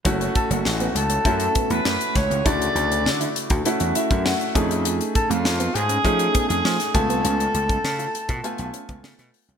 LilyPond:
<<
  \new Staff \with { instrumentName = "Alto saxophone" } { \time 4/4 \key fis \phrygian \tempo 4 = 100 r8 a'16 fis'8. a'8 a'8. b'8. cis''8 | d''4. r2 r8 | r8 a'16 f'8. gis'4~ gis'16 gis'8. a'8~ | a'2. r4 | }
  \new Staff \with { instrumentName = "Grand piano" } { \time 4/4 \key fis \phrygian << { r1 | r2 r8 e''8 fis''8 gis''8 | r1 | r1 | } \\ { <a cis' e' fis'>4. r8 <a cis' e' fis'>4. r8 | <cis a e' fis'>4. r8 <a cis' e' fis'>4. <a cis' ees' gis'>8~ | <a cis' ees' gis'>4 r4 <a cis' ees' gis'>4. <a b eis' gis''>8~ | <a b eis' gis''>4 r4 <a b eis' gis''>4. r8 | } >> }
  \new Staff \with { instrumentName = "Clean electric guitar" } { \time 4/4 \key fis \phrygian fis16 r8 a16 r16 b16 r16 cis'16 r8 b16 a16 a16 r8 cis'16 | d'16 r8 d'16 r16 e'16 r16 fis'16 r8 e'16 d'16 d'16 r8 ees'16 | f'16 r8 a16 r16 b16 r16 cis'16 r8 b16 a16 a16 r8 b16 | cis'16 r8 cis'16 r16 eis'16 r16 eis'16 r8 cis'16 b16 b16 r8 cis'16 | }
  \new Staff \with { instrumentName = "Slap bass" } { \clef bass \time 4/4 \key fis \phrygian fis,,8 r16 fis,,16 a,,8 cis,8 fis,8 r16 e,16 fis,16 r16 cis,16 cis,16 | d,8 d,8 d8 r16 d,16 r16 e,16 r16 fis,8 r16 f,8~ | f,8 r16 f,16 f,8 gis,8 f8 r16 f,16 f16 r16 cis,16 c,16 | cis,8 cis,8 cis8 r16 b,16 r16 b,,16 r16 cis,16 cis16 b,16 r16 c,16 | }
  \new DrumStaff \with { instrumentName = "Drums" } \drummode { \time 4/4 <hh bd>16 hh16 <hh bd>16 hh16 sn16 hh16 hh16 hh16 <hh bd>16 hh16 <hh bd>16 hh16 sn16 hh16 <hh bd sn>16 hh16 | <hh bd>16 hh16 hh16 hh16 sn16 hh16 hh16 <hh bd>16 hh16 hh16 hh16 <hh bd>16 sn16 hh16 <hh bd>16 hh16 | hh16 hh16 <hh bd>16 hh16 sn16 hh16 hh16 hh16 <hh bd>16 hh16 <hh bd>16 hh16 sn16 <hh sn>16 <hh bd>16 hh16 | hh16 hh16 hh16 <hh bd>16 sn16 hh16 hh16 <hh bd>16 hh16 hh16 hh16 <hh bd>16 sn16 <hh sn>16 hho16 hh16 | }
>>